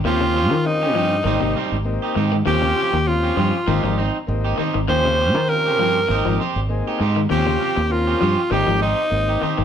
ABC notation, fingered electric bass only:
X:1
M:4/4
L:1/16
Q:"Swing 16ths" 1/4=99
K:Ebmix
V:1 name="Fingered electric bass" clef=bass
E,,3 E,3 G,,2 A,,, A,,, z A,,,2 z A,,2 | E,,2 z E,,3 G,, z A,,, A,,,2 z A,,,2 z A,,, | E,,3 E,3 G,,2 A,,, A,,, z A,,,2 z A,,2 | E,,2 z E,,3 G,, z A,,, A,,,2 z A,,,2 z A,,, |]